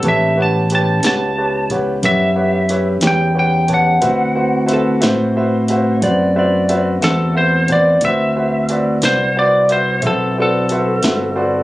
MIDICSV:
0, 0, Header, 1, 7, 480
1, 0, Start_track
1, 0, Tempo, 665188
1, 30, Time_signature, 12, 3, 24, 8
1, 8392, End_track
2, 0, Start_track
2, 0, Title_t, "Lead electric guitar"
2, 0, Program_c, 0, 29
2, 60, Note_on_c, 0, 76, 66
2, 278, Note_off_c, 0, 76, 0
2, 304, Note_on_c, 0, 81, 64
2, 520, Note_off_c, 0, 81, 0
2, 541, Note_on_c, 0, 81, 66
2, 758, Note_off_c, 0, 81, 0
2, 770, Note_on_c, 0, 81, 76
2, 1225, Note_off_c, 0, 81, 0
2, 1482, Note_on_c, 0, 76, 79
2, 2174, Note_off_c, 0, 76, 0
2, 2217, Note_on_c, 0, 79, 67
2, 2436, Note_off_c, 0, 79, 0
2, 2448, Note_on_c, 0, 79, 71
2, 2672, Note_off_c, 0, 79, 0
2, 2699, Note_on_c, 0, 78, 66
2, 4095, Note_off_c, 0, 78, 0
2, 5080, Note_on_c, 0, 69, 80
2, 5308, Note_off_c, 0, 69, 0
2, 5321, Note_on_c, 0, 72, 71
2, 5549, Note_off_c, 0, 72, 0
2, 5574, Note_on_c, 0, 74, 53
2, 5795, Note_off_c, 0, 74, 0
2, 5807, Note_on_c, 0, 76, 83
2, 6498, Note_off_c, 0, 76, 0
2, 6531, Note_on_c, 0, 72, 74
2, 6754, Note_off_c, 0, 72, 0
2, 6774, Note_on_c, 0, 74, 67
2, 6996, Note_off_c, 0, 74, 0
2, 7016, Note_on_c, 0, 72, 69
2, 7237, Note_off_c, 0, 72, 0
2, 7265, Note_on_c, 0, 69, 73
2, 7481, Note_off_c, 0, 69, 0
2, 7518, Note_on_c, 0, 69, 74
2, 8392, Note_off_c, 0, 69, 0
2, 8392, End_track
3, 0, Start_track
3, 0, Title_t, "Electric slide guitar"
3, 0, Program_c, 1, 29
3, 3416, Note_on_c, 1, 69, 80
3, 3636, Note_off_c, 1, 69, 0
3, 3636, Note_on_c, 1, 72, 75
3, 4331, Note_off_c, 1, 72, 0
3, 4355, Note_on_c, 1, 74, 71
3, 4585, Note_off_c, 1, 74, 0
3, 4610, Note_on_c, 1, 74, 74
3, 4950, Note_off_c, 1, 74, 0
3, 8392, End_track
4, 0, Start_track
4, 0, Title_t, "Grand piano"
4, 0, Program_c, 2, 0
4, 30, Note_on_c, 2, 71, 54
4, 33, Note_on_c, 2, 73, 54
4, 33, Note_on_c, 2, 81, 62
4, 34, Note_on_c, 2, 67, 61
4, 210, Note_off_c, 2, 71, 0
4, 212, Note_off_c, 2, 67, 0
4, 212, Note_off_c, 2, 73, 0
4, 212, Note_off_c, 2, 81, 0
4, 265, Note_on_c, 2, 71, 46
4, 269, Note_on_c, 2, 67, 49
4, 273, Note_on_c, 2, 73, 45
4, 276, Note_on_c, 2, 78, 53
4, 448, Note_off_c, 2, 71, 0
4, 449, Note_off_c, 2, 67, 0
4, 452, Note_off_c, 2, 73, 0
4, 453, Note_off_c, 2, 78, 0
4, 515, Note_on_c, 2, 67, 46
4, 516, Note_on_c, 2, 71, 46
4, 519, Note_on_c, 2, 73, 43
4, 521, Note_on_c, 2, 79, 49
4, 692, Note_off_c, 2, 67, 0
4, 693, Note_off_c, 2, 71, 0
4, 694, Note_off_c, 2, 73, 0
4, 696, Note_off_c, 2, 79, 0
4, 757, Note_on_c, 2, 67, 47
4, 760, Note_on_c, 2, 71, 43
4, 762, Note_on_c, 2, 78, 52
4, 765, Note_on_c, 2, 73, 44
4, 933, Note_off_c, 2, 67, 0
4, 935, Note_off_c, 2, 71, 0
4, 936, Note_off_c, 2, 78, 0
4, 937, Note_off_c, 2, 73, 0
4, 996, Note_on_c, 2, 67, 44
4, 997, Note_on_c, 2, 71, 43
4, 998, Note_on_c, 2, 73, 42
4, 999, Note_on_c, 2, 81, 50
4, 1173, Note_off_c, 2, 67, 0
4, 1173, Note_off_c, 2, 71, 0
4, 1174, Note_off_c, 2, 73, 0
4, 1174, Note_off_c, 2, 81, 0
4, 1233, Note_on_c, 2, 67, 47
4, 1236, Note_on_c, 2, 73, 46
4, 1237, Note_on_c, 2, 71, 46
4, 1241, Note_on_c, 2, 78, 52
4, 1411, Note_off_c, 2, 67, 0
4, 1413, Note_off_c, 2, 71, 0
4, 1413, Note_off_c, 2, 73, 0
4, 1415, Note_off_c, 2, 78, 0
4, 1469, Note_on_c, 2, 67, 43
4, 1472, Note_on_c, 2, 71, 42
4, 1473, Note_on_c, 2, 73, 40
4, 1473, Note_on_c, 2, 78, 46
4, 1649, Note_off_c, 2, 67, 0
4, 1651, Note_off_c, 2, 71, 0
4, 1651, Note_off_c, 2, 73, 0
4, 1651, Note_off_c, 2, 78, 0
4, 1698, Note_on_c, 2, 78, 49
4, 1700, Note_on_c, 2, 73, 41
4, 1702, Note_on_c, 2, 71, 45
4, 1703, Note_on_c, 2, 67, 47
4, 1884, Note_off_c, 2, 78, 0
4, 1885, Note_off_c, 2, 73, 0
4, 1886, Note_off_c, 2, 67, 0
4, 1886, Note_off_c, 2, 71, 0
4, 1944, Note_on_c, 2, 67, 44
4, 1947, Note_on_c, 2, 71, 43
4, 1949, Note_on_c, 2, 73, 46
4, 1951, Note_on_c, 2, 76, 53
4, 2127, Note_off_c, 2, 67, 0
4, 2128, Note_off_c, 2, 71, 0
4, 2129, Note_off_c, 2, 73, 0
4, 2130, Note_off_c, 2, 76, 0
4, 2179, Note_on_c, 2, 67, 46
4, 2179, Note_on_c, 2, 79, 54
4, 2183, Note_on_c, 2, 71, 39
4, 2185, Note_on_c, 2, 73, 41
4, 2364, Note_off_c, 2, 67, 0
4, 2364, Note_off_c, 2, 79, 0
4, 2366, Note_off_c, 2, 71, 0
4, 2367, Note_off_c, 2, 73, 0
4, 2414, Note_on_c, 2, 67, 43
4, 2415, Note_on_c, 2, 71, 39
4, 2418, Note_on_c, 2, 78, 47
4, 2421, Note_on_c, 2, 73, 42
4, 2601, Note_off_c, 2, 67, 0
4, 2602, Note_off_c, 2, 71, 0
4, 2604, Note_off_c, 2, 78, 0
4, 2605, Note_off_c, 2, 73, 0
4, 2658, Note_on_c, 2, 73, 43
4, 2661, Note_on_c, 2, 67, 45
4, 2661, Note_on_c, 2, 71, 40
4, 2664, Note_on_c, 2, 81, 51
4, 2844, Note_off_c, 2, 73, 0
4, 2845, Note_off_c, 2, 67, 0
4, 2845, Note_off_c, 2, 71, 0
4, 2847, Note_off_c, 2, 81, 0
4, 2895, Note_on_c, 2, 72, 50
4, 2897, Note_on_c, 2, 71, 53
4, 2899, Note_on_c, 2, 66, 58
4, 2899, Note_on_c, 2, 76, 59
4, 3082, Note_off_c, 2, 72, 0
4, 3083, Note_off_c, 2, 71, 0
4, 3084, Note_off_c, 2, 66, 0
4, 3084, Note_off_c, 2, 76, 0
4, 3141, Note_on_c, 2, 71, 43
4, 3141, Note_on_c, 2, 72, 43
4, 3142, Note_on_c, 2, 66, 49
4, 3143, Note_on_c, 2, 78, 48
4, 3325, Note_off_c, 2, 71, 0
4, 3325, Note_off_c, 2, 72, 0
4, 3326, Note_off_c, 2, 66, 0
4, 3326, Note_off_c, 2, 78, 0
4, 3365, Note_on_c, 2, 66, 58
4, 3366, Note_on_c, 2, 71, 55
4, 3371, Note_on_c, 2, 72, 50
4, 3376, Note_on_c, 2, 76, 61
4, 3557, Note_off_c, 2, 66, 0
4, 3557, Note_off_c, 2, 71, 0
4, 3560, Note_off_c, 2, 72, 0
4, 3563, Note_off_c, 2, 76, 0
4, 3610, Note_on_c, 2, 66, 55
4, 3610, Note_on_c, 2, 71, 51
4, 3614, Note_on_c, 2, 76, 62
4, 3621, Note_on_c, 2, 72, 52
4, 3799, Note_off_c, 2, 71, 0
4, 3800, Note_off_c, 2, 66, 0
4, 3801, Note_off_c, 2, 76, 0
4, 3805, Note_off_c, 2, 72, 0
4, 3867, Note_on_c, 2, 72, 50
4, 3870, Note_on_c, 2, 66, 55
4, 3873, Note_on_c, 2, 71, 51
4, 3874, Note_on_c, 2, 76, 59
4, 4048, Note_off_c, 2, 72, 0
4, 4050, Note_off_c, 2, 66, 0
4, 4051, Note_off_c, 2, 71, 0
4, 4052, Note_off_c, 2, 76, 0
4, 4106, Note_on_c, 2, 76, 63
4, 4113, Note_on_c, 2, 71, 47
4, 4114, Note_on_c, 2, 66, 60
4, 4115, Note_on_c, 2, 72, 48
4, 4288, Note_off_c, 2, 76, 0
4, 4291, Note_off_c, 2, 71, 0
4, 4292, Note_off_c, 2, 66, 0
4, 4292, Note_off_c, 2, 72, 0
4, 4348, Note_on_c, 2, 66, 52
4, 4351, Note_on_c, 2, 78, 56
4, 4352, Note_on_c, 2, 71, 49
4, 4355, Note_on_c, 2, 72, 50
4, 4529, Note_off_c, 2, 66, 0
4, 4530, Note_off_c, 2, 78, 0
4, 4531, Note_off_c, 2, 71, 0
4, 4532, Note_off_c, 2, 72, 0
4, 4588, Note_on_c, 2, 72, 52
4, 4589, Note_on_c, 2, 66, 55
4, 4591, Note_on_c, 2, 76, 58
4, 4592, Note_on_c, 2, 71, 49
4, 4769, Note_off_c, 2, 66, 0
4, 4769, Note_off_c, 2, 72, 0
4, 4770, Note_off_c, 2, 76, 0
4, 4771, Note_off_c, 2, 71, 0
4, 4828, Note_on_c, 2, 66, 60
4, 4828, Note_on_c, 2, 76, 65
4, 4831, Note_on_c, 2, 72, 48
4, 4834, Note_on_c, 2, 71, 52
4, 5009, Note_off_c, 2, 66, 0
4, 5009, Note_off_c, 2, 76, 0
4, 5010, Note_off_c, 2, 72, 0
4, 5012, Note_off_c, 2, 71, 0
4, 5066, Note_on_c, 2, 76, 51
4, 5067, Note_on_c, 2, 66, 49
4, 5067, Note_on_c, 2, 72, 44
4, 5070, Note_on_c, 2, 71, 44
4, 5248, Note_off_c, 2, 66, 0
4, 5248, Note_off_c, 2, 72, 0
4, 5248, Note_off_c, 2, 76, 0
4, 5250, Note_off_c, 2, 71, 0
4, 5304, Note_on_c, 2, 66, 46
4, 5306, Note_on_c, 2, 76, 51
4, 5311, Note_on_c, 2, 72, 40
4, 5312, Note_on_c, 2, 71, 43
4, 5487, Note_off_c, 2, 66, 0
4, 5488, Note_off_c, 2, 76, 0
4, 5490, Note_off_c, 2, 72, 0
4, 5491, Note_off_c, 2, 71, 0
4, 5552, Note_on_c, 2, 66, 45
4, 5554, Note_on_c, 2, 71, 45
4, 5555, Note_on_c, 2, 74, 52
4, 5556, Note_on_c, 2, 72, 45
4, 5731, Note_off_c, 2, 66, 0
4, 5732, Note_off_c, 2, 71, 0
4, 5732, Note_off_c, 2, 74, 0
4, 5733, Note_off_c, 2, 72, 0
4, 5801, Note_on_c, 2, 71, 55
4, 5803, Note_on_c, 2, 66, 57
4, 5803, Note_on_c, 2, 72, 54
4, 5806, Note_on_c, 2, 76, 66
4, 5976, Note_off_c, 2, 66, 0
4, 5976, Note_off_c, 2, 71, 0
4, 5977, Note_off_c, 2, 72, 0
4, 5978, Note_off_c, 2, 76, 0
4, 6033, Note_on_c, 2, 72, 44
4, 6037, Note_on_c, 2, 71, 41
4, 6037, Note_on_c, 2, 76, 50
4, 6038, Note_on_c, 2, 66, 46
4, 6212, Note_off_c, 2, 72, 0
4, 6213, Note_off_c, 2, 76, 0
4, 6214, Note_off_c, 2, 66, 0
4, 6214, Note_off_c, 2, 71, 0
4, 6276, Note_on_c, 2, 66, 51
4, 6277, Note_on_c, 2, 74, 57
4, 6279, Note_on_c, 2, 72, 42
4, 6280, Note_on_c, 2, 71, 44
4, 6453, Note_off_c, 2, 66, 0
4, 6454, Note_off_c, 2, 74, 0
4, 6455, Note_off_c, 2, 71, 0
4, 6455, Note_off_c, 2, 72, 0
4, 6512, Note_on_c, 2, 72, 44
4, 6513, Note_on_c, 2, 71, 43
4, 6519, Note_on_c, 2, 66, 46
4, 6520, Note_on_c, 2, 74, 52
4, 6691, Note_off_c, 2, 72, 0
4, 6692, Note_off_c, 2, 71, 0
4, 6695, Note_off_c, 2, 66, 0
4, 6695, Note_off_c, 2, 74, 0
4, 6755, Note_on_c, 2, 71, 44
4, 6756, Note_on_c, 2, 66, 47
4, 6756, Note_on_c, 2, 74, 50
4, 6762, Note_on_c, 2, 72, 45
4, 6933, Note_off_c, 2, 66, 0
4, 6933, Note_off_c, 2, 71, 0
4, 6933, Note_off_c, 2, 74, 0
4, 6936, Note_off_c, 2, 72, 0
4, 6998, Note_on_c, 2, 76, 55
4, 7000, Note_on_c, 2, 72, 44
4, 7004, Note_on_c, 2, 71, 42
4, 7006, Note_on_c, 2, 66, 46
4, 7175, Note_off_c, 2, 72, 0
4, 7175, Note_off_c, 2, 76, 0
4, 7178, Note_off_c, 2, 66, 0
4, 7178, Note_off_c, 2, 71, 0
4, 7235, Note_on_c, 2, 72, 43
4, 7235, Note_on_c, 2, 76, 49
4, 7236, Note_on_c, 2, 66, 43
4, 7242, Note_on_c, 2, 71, 43
4, 7413, Note_off_c, 2, 72, 0
4, 7413, Note_off_c, 2, 76, 0
4, 7414, Note_off_c, 2, 66, 0
4, 7417, Note_off_c, 2, 71, 0
4, 7491, Note_on_c, 2, 72, 45
4, 7492, Note_on_c, 2, 74, 54
4, 7493, Note_on_c, 2, 66, 50
4, 7493, Note_on_c, 2, 71, 43
4, 7661, Note_off_c, 2, 72, 0
4, 7662, Note_off_c, 2, 66, 0
4, 7662, Note_off_c, 2, 71, 0
4, 7662, Note_off_c, 2, 74, 0
4, 7724, Note_on_c, 2, 66, 51
4, 7731, Note_on_c, 2, 71, 45
4, 7731, Note_on_c, 2, 76, 54
4, 7735, Note_on_c, 2, 72, 46
4, 7898, Note_off_c, 2, 66, 0
4, 7901, Note_off_c, 2, 71, 0
4, 7902, Note_off_c, 2, 76, 0
4, 7903, Note_off_c, 2, 72, 0
4, 7964, Note_on_c, 2, 76, 51
4, 7965, Note_on_c, 2, 71, 44
4, 7965, Note_on_c, 2, 72, 42
4, 7967, Note_on_c, 2, 66, 49
4, 8138, Note_off_c, 2, 76, 0
4, 8139, Note_off_c, 2, 66, 0
4, 8139, Note_off_c, 2, 71, 0
4, 8139, Note_off_c, 2, 72, 0
4, 8195, Note_on_c, 2, 72, 51
4, 8196, Note_on_c, 2, 71, 50
4, 8197, Note_on_c, 2, 66, 57
4, 8201, Note_on_c, 2, 74, 63
4, 8374, Note_off_c, 2, 71, 0
4, 8374, Note_off_c, 2, 72, 0
4, 8375, Note_off_c, 2, 66, 0
4, 8377, Note_off_c, 2, 74, 0
4, 8392, End_track
5, 0, Start_track
5, 0, Title_t, "Tonewheel organ"
5, 0, Program_c, 3, 16
5, 13, Note_on_c, 3, 60, 55
5, 15, Note_on_c, 3, 67, 56
5, 17, Note_on_c, 3, 62, 54
5, 28, Note_on_c, 3, 56, 55
5, 234, Note_off_c, 3, 67, 0
5, 238, Note_on_c, 3, 61, 59
5, 243, Note_on_c, 3, 59, 56
5, 243, Note_on_c, 3, 64, 57
5, 243, Note_on_c, 3, 67, 58
5, 262, Note_off_c, 3, 60, 0
5, 263, Note_off_c, 3, 62, 0
5, 269, Note_off_c, 3, 56, 0
5, 2867, Note_off_c, 3, 61, 0
5, 2869, Note_off_c, 3, 59, 0
5, 2869, Note_off_c, 3, 64, 0
5, 2869, Note_off_c, 3, 67, 0
5, 2898, Note_on_c, 3, 64, 61
5, 2898, Note_on_c, 3, 66, 57
5, 2902, Note_on_c, 3, 57, 60
5, 2909, Note_on_c, 3, 60, 59
5, 5756, Note_off_c, 3, 64, 0
5, 5756, Note_off_c, 3, 66, 0
5, 5757, Note_off_c, 3, 57, 0
5, 5761, Note_off_c, 3, 60, 0
5, 5784, Note_on_c, 3, 60, 60
5, 5784, Note_on_c, 3, 64, 57
5, 5787, Note_on_c, 3, 66, 54
5, 5789, Note_on_c, 3, 72, 59
5, 8392, Note_off_c, 3, 60, 0
5, 8392, Note_off_c, 3, 64, 0
5, 8392, Note_off_c, 3, 66, 0
5, 8392, Note_off_c, 3, 72, 0
5, 8392, End_track
6, 0, Start_track
6, 0, Title_t, "Fingered electric bass"
6, 0, Program_c, 4, 33
6, 24, Note_on_c, 4, 33, 73
6, 725, Note_off_c, 4, 33, 0
6, 745, Note_on_c, 4, 37, 76
6, 1445, Note_off_c, 4, 37, 0
6, 1461, Note_on_c, 4, 42, 69
6, 2163, Note_off_c, 4, 42, 0
6, 2175, Note_on_c, 4, 40, 79
6, 2880, Note_off_c, 4, 40, 0
6, 2904, Note_on_c, 4, 38, 61
6, 3605, Note_off_c, 4, 38, 0
6, 3626, Note_on_c, 4, 45, 77
6, 4326, Note_off_c, 4, 45, 0
6, 4342, Note_on_c, 4, 42, 69
6, 5044, Note_off_c, 4, 42, 0
6, 5066, Note_on_c, 4, 40, 76
6, 5767, Note_off_c, 4, 40, 0
6, 5782, Note_on_c, 4, 38, 67
6, 6485, Note_off_c, 4, 38, 0
6, 6512, Note_on_c, 4, 36, 80
6, 7210, Note_off_c, 4, 36, 0
6, 7231, Note_on_c, 4, 35, 78
6, 7930, Note_off_c, 4, 35, 0
6, 7953, Note_on_c, 4, 31, 81
6, 8392, Note_off_c, 4, 31, 0
6, 8392, End_track
7, 0, Start_track
7, 0, Title_t, "Drums"
7, 20, Note_on_c, 9, 42, 59
7, 23, Note_on_c, 9, 36, 90
7, 92, Note_off_c, 9, 42, 0
7, 96, Note_off_c, 9, 36, 0
7, 505, Note_on_c, 9, 42, 51
7, 577, Note_off_c, 9, 42, 0
7, 743, Note_on_c, 9, 42, 71
7, 753, Note_on_c, 9, 38, 92
7, 815, Note_off_c, 9, 42, 0
7, 825, Note_off_c, 9, 38, 0
7, 1225, Note_on_c, 9, 36, 60
7, 1227, Note_on_c, 9, 42, 48
7, 1297, Note_off_c, 9, 36, 0
7, 1299, Note_off_c, 9, 42, 0
7, 1465, Note_on_c, 9, 42, 63
7, 1466, Note_on_c, 9, 36, 93
7, 1537, Note_off_c, 9, 42, 0
7, 1538, Note_off_c, 9, 36, 0
7, 1942, Note_on_c, 9, 42, 55
7, 2014, Note_off_c, 9, 42, 0
7, 2173, Note_on_c, 9, 42, 68
7, 2183, Note_on_c, 9, 38, 86
7, 2245, Note_off_c, 9, 42, 0
7, 2255, Note_off_c, 9, 38, 0
7, 2657, Note_on_c, 9, 42, 50
7, 2662, Note_on_c, 9, 36, 61
7, 2730, Note_off_c, 9, 42, 0
7, 2734, Note_off_c, 9, 36, 0
7, 2899, Note_on_c, 9, 42, 69
7, 2903, Note_on_c, 9, 36, 83
7, 2971, Note_off_c, 9, 42, 0
7, 2975, Note_off_c, 9, 36, 0
7, 3381, Note_on_c, 9, 42, 49
7, 3453, Note_off_c, 9, 42, 0
7, 3620, Note_on_c, 9, 42, 65
7, 3630, Note_on_c, 9, 38, 90
7, 3693, Note_off_c, 9, 42, 0
7, 3703, Note_off_c, 9, 38, 0
7, 4101, Note_on_c, 9, 42, 50
7, 4173, Note_off_c, 9, 42, 0
7, 4345, Note_on_c, 9, 36, 82
7, 4346, Note_on_c, 9, 42, 64
7, 4417, Note_off_c, 9, 36, 0
7, 4418, Note_off_c, 9, 42, 0
7, 4828, Note_on_c, 9, 42, 52
7, 4900, Note_off_c, 9, 42, 0
7, 5068, Note_on_c, 9, 42, 60
7, 5078, Note_on_c, 9, 38, 80
7, 5140, Note_off_c, 9, 42, 0
7, 5150, Note_off_c, 9, 38, 0
7, 5544, Note_on_c, 9, 42, 52
7, 5546, Note_on_c, 9, 36, 67
7, 5616, Note_off_c, 9, 42, 0
7, 5618, Note_off_c, 9, 36, 0
7, 5780, Note_on_c, 9, 42, 74
7, 5786, Note_on_c, 9, 36, 82
7, 5852, Note_off_c, 9, 42, 0
7, 5858, Note_off_c, 9, 36, 0
7, 6268, Note_on_c, 9, 42, 54
7, 6341, Note_off_c, 9, 42, 0
7, 6508, Note_on_c, 9, 42, 67
7, 6518, Note_on_c, 9, 38, 89
7, 6580, Note_off_c, 9, 42, 0
7, 6590, Note_off_c, 9, 38, 0
7, 6993, Note_on_c, 9, 42, 52
7, 7065, Note_off_c, 9, 42, 0
7, 7231, Note_on_c, 9, 42, 68
7, 7232, Note_on_c, 9, 36, 87
7, 7303, Note_off_c, 9, 42, 0
7, 7305, Note_off_c, 9, 36, 0
7, 7715, Note_on_c, 9, 42, 51
7, 7788, Note_off_c, 9, 42, 0
7, 7956, Note_on_c, 9, 42, 61
7, 7967, Note_on_c, 9, 38, 92
7, 8029, Note_off_c, 9, 42, 0
7, 8039, Note_off_c, 9, 38, 0
7, 8392, End_track
0, 0, End_of_file